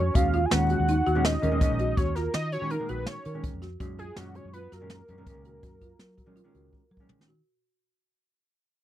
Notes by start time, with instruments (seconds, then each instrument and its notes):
Already playing: marimba F#4, analog synth lead C#5
0.14 fingered electric bass D#2, hollow-body jazz guitar A#2 D#3 G#3 C#4, marimba F#4, analog synth lead F5, kick, closed hi-hat
0.33 marimba F4, closed hi-hat
0.45 analog synth lead G#5
0.50 fingered electric bass D#2, hollow-body jazz guitar A#2 D#3 G#3 C#4, analog synth lead F#5, snare, closed hi-hat
0.70 marimba F#4, closed hi-hat
0.80 fingered electric bass D#2
0.88 marimba D#4, closed hi-hat
1.06 fingered electric bass D#2, marimba F#4, closed hi-hat
1.15 hollow-body jazz guitar A#2 D#3 G#3 C#4
1.25 analog synth lead D#5, snare, closed hi-hat
1.42 fingered electric bass D#2, hollow-body jazz guitar A#2 D#3 G#3 C#4, marimba A#4, closed hi-hat
1.51 hollow-body jazz guitar A#2 D#3 G#3 C#4
1.61 hollow-body jazz guitar A#2 D#3 G#3 C#4, kick, closed hi-hat
1.71 fingered electric bass A#1
1.79 marimba F#4, closed hi-hat
1.97 fingered electric bass D#2, marimba F#4, analog synth lead C#5, kick, closed hi-hat
2.15 marimba F4, analog synth lead A#4, snare, closed hi-hat
2.34 fingered electric bass D#3, analog synth lead D#5, snare, closed hi-hat
2.52 marimba F#4, analog synth lead C#5, closed hi-hat
2.61 hollow-body jazz guitar A#2 D#3 G#3 C#4, fingered electric bass D#3
2.70 marimba D#4, analog synth lead A#4, closed hi-hat
2.80 hollow-body jazz guitar A#2 D#3 G#3 A#3
2.88 fingered electric bass A#1, marimba F#4, analog synth lead B4, closed hi-hat
3.06 analog synth lead C#5, snare, closed hi-hat
3.25 fingered electric bass D#3, marimba A#4, closed hi-hat
3.34 hollow-body jazz guitar A#2 D#3 G#3 C#4
3.44 kick, closed hi-hat
3.53 fingered electric bass F2
3.62 marimba F#4, snare, closed hi-hat
3.80 fingered electric bass F#2, hollow-body jazz guitar A#2 D#3 G#3 C#4, marimba F#4, kick, closed hi-hat
3.99 marimba F4, analog synth lead G#4, closed hi-hat
4.16 fingered electric bass F#2, hollow-body jazz guitar A#2 D#3 G#3 C#4, analog synth lead F#4, snare, closed hi-hat
4.35 marimba F#4, analog synth lead C#5, closed hi-hat
4.45 fingered electric bass F#2
4.53 marimba F4, analog synth lead B4, closed hi-hat
4.72 fingered electric bass F#2, marimba F#4, analog synth lead A#4, snare, closed hi-hat
4.81 hollow-body jazz guitar A#2 D#3 G#3 C#4
4.90 snare, closed hi-hat
5.08 fingered electric bass F#2, hollow-body jazz guitar A#2 D#3 G#3 C#4, marimba A#4, closed hi-hat
5.18 hollow-body jazz guitar A#2 D#3 G#3 C#4
5.26 hollow-body jazz guitar A#2 D#3 G#3 C#4, kick, closed hi-hat
5.36 fingered electric bass C#2
5.45 marimba F#4, closed hi-hat
5.63 fingered electric bass F#2, marimba F#4, kick, closed hi-hat
5.81 marimba F4, kick, closed hi-hat
5.99 fingered electric bass F#3, snare, closed hi-hat
6.18 marimba F#4, kick, closed hi-hat
6.26 hollow-body jazz guitar A#2 D#3 G#3 C#4, fingered electric bass F#3
6.36 marimba F4, closed hi-hat
6.44 hollow-body jazz guitar A#2 D#3 G#3 C#4
6.54 fingered electric bass C#2, marimba F#4, closed hi-hat
6.73 kick
6.91 fingered electric bass F#3, marimba A#4
6.97 hollow-body jazz guitar A#2 D#3 G#3 C#4, kick
7.09 mid tom
7.19 fingered electric bass D#3, snare
7.28 marimba F#4